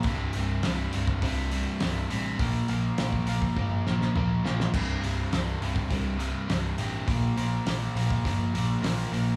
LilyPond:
<<
  \new Staff \with { instrumentName = "Overdriven electric guitar" } { \clef bass \time 4/4 \key bes \lydian \tempo 4 = 102 <c, g, c>8 <c, g, c>8 <c, g, c>8 <c, g, c>8 <c, g, c>8 <c, g, c>8 <c, g, c>8 <c, g, c>8 | <bes, f bes>8 <bes, f bes>8 <bes, f bes>8 <bes, f bes>8 <bes, f bes>8 <bes, f bes>8 <bes, f bes>8 <bes, f bes>8 | <c, g, c>8 <c, g, c>8 <c, g, c>8 <c, g, c>8 <c, g, c>8 <c, g, c>8 <c, g, c>8 <c, g, c>8 | <bes, f bes>8 <bes, f bes>8 <bes, f bes>8 <bes, f bes>8 <bes, f bes>8 <bes, f bes>8 <bes, f bes>8 <bes, f bes>8 | }
  \new Staff \with { instrumentName = "Fingered electric bass" } { \clef bass \time 4/4 \key bes \lydian c,,8 c,,8 c,,8 c,,8 c,4 c,,8 a,,8 | bes,,8 bes,,8 bes,,8 bes,,8 g,,8 bes,,8 bes,,8 bes,,8 | c,,8 c,,8 c,,8 c,,8 c,4 c,,8 a,,8 | bes,,8 bes,,8 bes,,8 bes,,8 g,,8 bes,,8 bes,,8 bes,,8 | }
  \new DrumStaff \with { instrumentName = "Drums" } \drummode { \time 4/4 <hho bd>8 hho8 <hho sn>8 hho16 bd16 <hho bd>8 hho8 <hho sn>8 hho8 | <hho bd>8 hho8 <hho sn>16 bd16 hho16 bd16 <bd tommh>8 sn16 sn16 toml8 sn16 sn16 | <cymc bd>8 hho8 <hho sn>8 hho16 bd16 <hho bd>8 hho8 <hho sn>8 hho8 | <hho bd>8 hho8 <hho sn>8 hho16 bd16 <hho bd>8 hho8 <hho sn>8 hho8 | }
>>